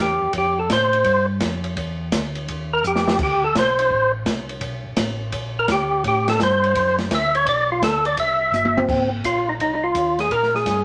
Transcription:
0.00 tonewheel organ E2 G4
0.22 tonewheel organ E2
0.33 tonewheel organ F2, kick, ride
0.38 tonewheel organ G4
0.59 tonewheel organ A4
0.69 tonewheel organ A2 C5, kick, snare, hi-hat pedal, ride
0.93 ride
1.04 tonewheel organ G2, kick, ride
1.40 tonewheel organ F2, kick, snare, hi-hat pedal, ride
1.64 ride
1.77 tonewheel organ E2, kick, ride
2.12 tonewheel organ D2, kick, snare, hi-hat pedal, ride
2.35 ride
2.48 tonewheel organ D#2, kick, ride
2.73 tonewheel organ A#4
2.84 tonewheel organ F2 G4, hi-hat pedal
2.96 snare
3.08 snare
3.19 tonewheel organ D2, kick, crash
3.23 tonewheel organ G4
3.44 tonewheel organ A4
3.55 tonewheel organ B1 C5, kick, snare, hi-hat pedal, ride
3.79 ride
3.90 tonewheel organ A1, kick
4.26 tonewheel organ C2, kick, snare, hi-hat pedal, ride
4.49 ride
4.61 tonewheel organ B1, kick, ride
4.86 tonewheel organ B1
4.97 tonewheel organ A1, kick, snare, hi-hat pedal, ride
5.32 tonewheel organ A#1, kick, ride
5.59 tonewheel organ A#4
5.68 tonewheel organ D2 G4, kick, snare, hi-hat pedal, ride
6.04 tonewheel organ A2 G4, kick, ride
6.28 tonewheel organ A4, snare, ride
6.40 tonewheel organ G2 C5, kick, snare, hi-hat pedal
6.64 ride
6.75 tonewheel organ F#2, kick, ride
6.98 snare, ride
7.11 tonewheel organ D2 E5, kick, snare, hi-hat pedal, ride
7.35 tonewheel organ C#5, ride
7.46 tonewheel organ B1 D5, kick, ride
7.72 tonewheel organ F4
7.82 tonewheel organ D2 A4, kick, snare, hi-hat pedal, ride
8.05 tonewheel organ D5, ride
8.17 tonewheel organ C2 E5, kick, ride
8.52 tonewheel organ G1, hi-hat pedal, high tom
8.65 high tom
8.77 tonewheel organ C4, high tom
8.89 tonewheel organ G#1, kick, crash
9.24 tonewheel organ A#1 F4, kick, hi-hat pedal, ride
9.49 tonewheel organ D#4
9.60 tonewheel organ C2 D#4, kick, ride
9.75 tonewheel organ D#4
9.83 tonewheel organ F4
9.95 tonewheel organ D#2, kick, hi-hat pedal, ride
10.19 tonewheel organ G#4, snare, ride
10.30 tonewheel organ A#2 A#4, kick, ride
10.43 snare
10.55 tonewheel organ G#4, snare
10.66 tonewheel organ G2, kick, snare, hi-hat pedal, ride

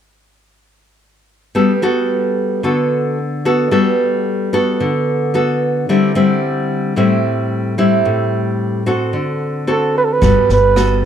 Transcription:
1.55 nylon-string guitar G3 B3 F#4 A4
1.82 nylon-string guitar B3 F#4 A4
2.63 nylon-string guitar D3 B3 F#4 A4
3.45 nylon-string guitar B3 F#4 A4
3.71 nylon-string guitar G3 B3 F#4 A4
4.53 nylon-string guitar B3 F#4 A4
4.80 nylon-string guitar D3
5.34 nylon-string guitar B3 F#4 A4
5.89 nylon-string guitar D3 G3 C4 E4
6.15 nylon-string guitar G3 C4 E4
6.96 nylon-string guitar A2 G3 C4 E4
7.78 nylon-string guitar G3 C4 E4
8.05 nylon-string guitar A2
8.86 nylon-string guitar C4 F#4 A4
9.13 nylon-string guitar D3
9.67 nylon-string guitar C4 F#4 A4
9.71 flugelhorn A4
9.98 flugelhorn B4
10.04 flugelhorn A4
10.13 flugelhorn B4
10.21 upright bass G1, nylon-string guitar G3 B3 F#4 A4, kick, snare
10.49 upright bass G1, flugelhorn B4, snare
10.76 nylon-string guitar B3 F#4 A4, cross-stick, snare

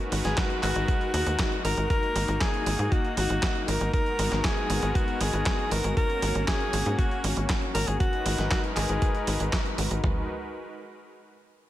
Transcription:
Already playing: analog synth pad G#3 D#4 F#4 A#4 B4
0.12 analog synth bass G#1, open hi-hat
0.25 analog synth bass G#1, alto saxophone G#4, snare, closed hi-hat
0.37 alto saxophone F#4, kick, snare, clap, closed hi-hat
0.50 closed hi-hat
0.63 analog synth bass G#1, alto saxophone F#4, clap, open hi-hat
0.76 analog synth bass G#1, closed hi-hat
0.88 kick, closed hi-hat
1.01 closed hi-hat
1.14 analog synth bass D#2, alto saxophone F#4, open hi-hat
1.27 analog synth bass D#2, closed hi-hat
1.39 kick, snare, clap, closed hi-hat
1.52 closed hi-hat
1.65 analog synth bass G#1, alto saxophone A#4, open hi-hat
1.77 analog synth bass G#1, closed hi-hat
1.90 analog synth pad A#3, alto saxophone A#4, kick, closed hi-hat
2.03 closed hi-hat
2.16 analog synth bass G#1, open hi-hat
2.28 analog synth bass G#1, closed hi-hat
2.41 alto saxophone G#4, kick, snare, clap, closed hi-hat
2.54 closed hi-hat
2.66 analog synth bass G#1, open hi-hat
2.79 analog synth bass G#2, closed hi-hat
2.92 alto saxophone F#4, kick, closed hi-hat
3.05 closed hi-hat
3.17 analog synth bass G#1, alto saxophone F#4, open hi-hat
3.30 analog synth bass G#1, closed hi-hat
3.43 kick, snare, clap, closed hi-hat
3.56 closed hi-hat
3.68 analog synth bass G#1, alto saxophone A#4, open hi-hat
3.81 analog synth bass G#1, closed hi-hat
3.94 analog synth pad G#3 B3 F#4 A#4, alto saxophone A#4, kick, closed hi-hat
4.06 closed hi-hat
4.19 analog synth bass G#1, open hi-hat
4.32 analog synth bass G#1, snare, closed hi-hat
4.44 alto saxophone G#4, kick, snare, clap, closed hi-hat
4.57 closed hi-hat
4.70 analog synth bass G#1, open hi-hat
4.83 analog synth bass G#1, closed hi-hat
4.95 alto saxophone F#4, kick, closed hi-hat
5.08 closed hi-hat
5.21 analog synth bass G#1, alto saxophone G#4, open hi-hat
5.33 analog synth bass G#1, closed hi-hat
5.46 kick, snare, clap, closed hi-hat
5.59 closed hi-hat
5.71 analog synth bass G#1, alto saxophone A#4, open hi-hat
5.84 analog synth bass G#1, closed hi-hat
5.97 analog synth pad A#3 C#4, alto saxophone A#4, kick, closed hi-hat
6.10 closed hi-hat
6.22 analog synth bass G#1, open hi-hat
6.35 analog synth bass G#1, closed hi-hat
6.48 alto saxophone G#4, kick, snare, clap, closed hi-hat
6.60 closed hi-hat
6.73 analog synth bass G#1, open hi-hat
6.86 analog synth bass G#2, closed hi-hat
6.99 alto saxophone F#4, kick, closed hi-hat
7.11 closed hi-hat
7.24 analog synth bass G#1, open hi-hat
7.37 analog synth bass G#1, closed hi-hat
7.49 kick, snare, clap, closed hi-hat
7.62 closed hi-hat
7.75 analog synth bass G#1, alto saxophone A#4, open hi-hat
7.87 analog synth bass G#1, alto saxophone G#4, closed hi-hat
8.00 analog synth pad G#3 D#4 A#4 B4, alto saxophone F#4, kick, closed hi-hat
8.13 closed hi-hat
8.26 analog synth bass G#1, open hi-hat
8.38 analog synth bass G#1, snare, closed hi-hat
8.51 alto saxophone F#4, kick, snare, clap, closed hi-hat
8.64 closed hi-hat
8.76 analog synth bass G#1, alto saxophone G#4, clap, open hi-hat
8.89 analog synth bass G#1, closed hi-hat
9.02 kick, closed hi-hat
9.15 closed hi-hat
9.27 analog synth bass G#1, open hi-hat
9.40 analog synth bass G#1, closed hi-hat
9.53 kick, snare, clap, closed hi-hat
9.66 closed hi-hat
9.78 analog synth bass G#1, open hi-hat
9.91 analog synth bass G#1, closed hi-hat
10.03 analog synth bass G#1, analog synth pad G#3 D#4 F#4 A#4 B4, kick, floor tom

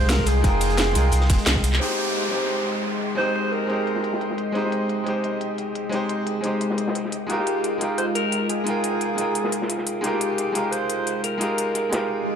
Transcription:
Already playing: grand piano G#3 D#4 F4 G4 A#4, analog synth pad G#3 D#5 G5 C6, alto saxophone C5
0.02 sub bass C2
0.09 alto saxophone A#4, snare, closed hi-hat
0.19 kick
0.26 alto saxophone G#4, closed hi-hat, ride
0.41 sub bass F1, grand piano G#3 D#4 F4, kick, closed hi-hat
0.46 grand piano A#4 G5
0.61 closed hi-hat, ride
0.70 closed hi-hat
0.78 snare, closed hi-hat
0.92 sub bass C2, grand piano G#3 D#4 F4, closed hi-hat, ride
0.97 grand piano A#4 G5
1.12 sub bass C2, closed hi-hat
1.21 snare
1.30 sub bass D#1, kick, snare, closed hi-hat, ride
1.39 closed hi-hat
1.46 sub bass C2, snare, clap, closed hi-hat
1.56 kick
1.64 closed hi-hat, ride
1.73 snare, clap
1.78 grand piano G#3 C4 D#4, analog synth pad G#3 D#5 G5 C6, alto saxophone G4, closed hi-hat, crash, downlifter
1.82 grand piano G4 C5
1.90 snare
1.98 closed hi-hat
2.07 closed hi-hat
2.15 closed hi-hat
2.29 grand piano G#3 C4 D#4, closed hi-hat
2.34 grand piano G4 C5
2.49 closed hi-hat
2.67 closed hi-hat
2.84 closed hi-hat
3.01 closed hi-hat
3.15 grand piano G#3 C4 D#4, alto saxophone C5, closed hi-hat
3.20 grand piano G4 C5
3.35 closed hi-hat
3.52 alto saxophone A#4, closed hi-hat
3.67 grand piano G#3 C4 D#4, closed hi-hat
3.72 grand piano G4 C5
3.87 closed hi-hat
3.96 snare
4.04 closed hi-hat
4.13 snare
4.21 closed hi-hat
4.30 snare
4.38 closed hi-hat, open hi-hat
4.52 grand piano G#3 C4 D#4, closed hi-hat
4.57 grand piano G4 C5
4.64 snare
4.72 closed hi-hat
4.82 closed hi-hat
4.89 closed hi-hat
5.04 grand piano G#3 C4 D#4, closed hi-hat
5.08 grand piano G4 C5
5.23 closed hi-hat
5.41 closed hi-hat
5.58 closed hi-hat
5.75 closed hi-hat
5.89 grand piano G#3 C4 D#4, closed hi-hat
5.94 grand piano G4 C5
6.09 closed hi-hat
6.18 closed hi-hat
6.26 closed hi-hat
6.41 grand piano G#3 C4 D#4, closed hi-hat
6.45 grand piano G4 C5
6.60 closed hi-hat
6.70 snare
6.78 closed hi-hat
6.88 snare
6.95 closed hi-hat
7.05 snare
7.12 analog synth pad F4 A#4, closed hi-hat, open hi-hat
7.27 grand piano G#3 D#4 F4, alto saxophone G4, closed hi-hat
7.31 grand piano G4 A#4
7.39 snare
7.47 closed hi-hat
7.56 closed hi-hat
7.64 closed hi-hat
7.78 grand piano G#3 D#4 F4, closed hi-hat
7.83 grand piano G4 A#4
7.98 alto saxophone C5, closed hi-hat
8.15 alto saxophone A#4, closed hi-hat
8.32 closed hi-hat
8.49 alto saxophone G#4, closed hi-hat
8.64 grand piano G#3 D#4 F4, closed hi-hat
8.68 grand piano A#4 G5
8.84 closed hi-hat
8.94 closed hi-hat
9.01 closed hi-hat
9.15 grand piano G#3 D#4 F4, closed hi-hat
9.20 grand piano A#4 G5
9.35 closed hi-hat
9.44 snare
9.52 closed hi-hat
9.62 snare
9.69 closed hi-hat
9.78 snare
9.87 closed hi-hat, open hi-hat
10.01 grand piano G#3 D#4 F4, alto saxophone G4, closed hi-hat
10.05 grand piano G4 A#4
10.13 snare
10.21 closed hi-hat
10.31 closed hi-hat
10.38 closed hi-hat
10.52 grand piano G#3 D#4 F4, closed hi-hat
10.57 grand piano G4 A#4
10.72 alto saxophone C5, closed hi-hat
10.90 closed hi-hat
11.07 closed hi-hat
11.24 alto saxophone A#4, closed hi-hat
11.38 grand piano G#3 D#4 F4, closed hi-hat
11.42 grand piano G4 A#4
11.58 closed hi-hat
11.75 closed hi-hat
11.89 grand piano G#3 D#4 F4, snare, closed hi-hat
11.94 grand piano G4 A#4
12.10 swell

